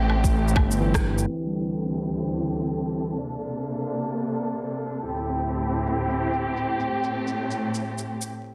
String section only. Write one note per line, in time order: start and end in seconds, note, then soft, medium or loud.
0.00 1.25 A3 medium
0.00 1.23 C4 medium
0.00 1.23 G4 medium
1.27 3.13 D2 medium
1.27 3.12 D3 medium
1.27 3.12 C4 medium
1.27 3.13 E4 medium
1.27 3.12 G4 medium
1.27 6.85 A4 medium
3.15 5.00 C3 medium
3.15 5.00 A#3 medium
3.15 5.00 D4 medium
5.02 6.88 D2 medium
5.02 6.88 A2 medium
5.02 8.27 C4 medium
5.02 6.88 E4 medium
5.02 8.27 G4 medium
6.89 8.28 A2 medium
6.89 8.28 A3 medium